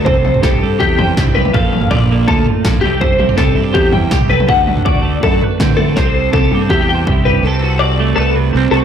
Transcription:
<<
  \new Staff \with { instrumentName = "Clean electric guitar" } { \time 4/4 \key c \lydian \tempo 4 = 163 c''4 a'4 g'8 g''4 b'8 | f''4 d''4 a'8 r4 g'8 | c''4 a'4 g'8 g''4 b'8 | fis''4 d''4 a'8 r4 a'8 |
c''4 a'4 g'8 g''4 b'8 | a'4 d''4 a'8 r4 a'8 | }
  \new Staff \with { instrumentName = "Clean electric guitar" } { \time 4/4 \key c \lydian << { a'4 g'8 a'8 g'8 c''8 e'8 g'8 | a'4 f'8 a'8 f'4. <g e' g' a'>8~ | <g e' g' a'>8 e'16 g'16 a'8 e'16 g'16 c''8 e'8 g'8 a'8 | a'4 fis'8 a'8 e'16 fis'16 b'8 c'8 e'16 fis'16 |
g'16 a'8. g'8 g'16 a'16 e'16 g'16 c''8 e'8 g'8 | a'8 fis'4. b'4 c'8 fis'8 | } \\ { c4. g4. g,4 | bes,4. bes4 a,8 bes,8 c8~ | c4 g4. g,4 c8 | d4. a4. a,4 |
c4. g4. g,4 | c4. a4 c4. | } >> }
  \new Staff \with { instrumentName = "Fingered electric bass" } { \clef bass \time 4/4 \key c \lydian c,4 c,8 g,8 e,4 c,4 | bes,,4 bes,,4 d,8 r8 bes,,8 c,8~ | c,4 c,8 g,8 e,4 c,4 | d,4 d,4 fis,8 r8 d4 |
c,4 c,8 g,8 e,4 c,4 | c,2 c,4 c,8 c,16 r16 | }
  \new DrumStaff \with { instrumentName = "Drums" } \drummode { \time 4/4 <bd tomfh>8 toml16 tomfh16 <bd sn>16 tomfh8. bd8 <tomfh toml>8 <bd sn>16 tomfh16 toml16 toml16 | <bd tomfh>8 toml16 tomfh16 bd16 tomfh8. bd8 tomfh8 <bd sn>16 tomfh16 toml8 | <bd tomfh>8 toml16 tomfh16 <bd sn>16 tomfh8. bd8 <tomfh toml>8 <bd sn>16 tomfh16 toml16 toml16 | <bd tomfh>8 toml16 tomfh16 bd16 tomfh8. bd8 tomfh8 <bd sn>16 tomfh16 toml8 |
<bd sn>4 <bd tommh>8 tommh8 <bd toml>4 <bd tomfh>8 tomfh8 | r4 r4 r4 r4 | }
>>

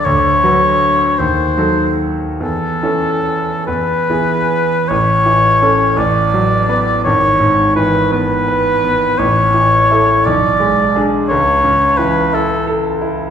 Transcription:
<<
  \new Staff \with { instrumentName = "Oboe" } { \time 6/8 \key a \major \tempo 4. = 56 cis''4. bis'4 r8 | a'4. b'4. | cis''4. d''4. | cis''4 b'8 b'4. |
cis''4. d''4 r8 | cis''4 b'8 a'8 r4 | }
  \new Staff \with { instrumentName = "Grand piano" } { \time 6/8 \key a \major d,8 <fis fis' b'>4 dis,8 <fis dis' a'>4 | e,8 <e cis' a'>4 e,8 <e b gis'>4 | a,,8 e8 <cis' a'>8 a,,8 fis8 <b b'>8 | gis,,8 gis,8 e8 b8 b'8 b8 |
a,,8 e8 <e' a'>8 b,,8 gis8 <d' gis'>8 | cis,8 cis8 e8 e'8 a'8 e'8 | }
>>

